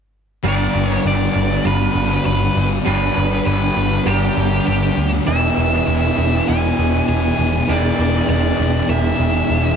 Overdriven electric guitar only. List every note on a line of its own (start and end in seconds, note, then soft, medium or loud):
0.44 2.84 G3 medium
0.44 2.87 B3 medium
0.44 2.88 D4 medium
2.86 5.25 G3 medium
2.86 5.28 B3 medium
2.86 5.29 D4 loud
5.27 7.67 E3 medium
5.27 7.69 B3 medium
5.27 7.70 D4 medium
5.27 7.69 G#4 medium
7.68 9.76 E3 medium
7.68 9.76 B3 medium
7.68 9.76 D4 medium
7.68 9.76 G#4 medium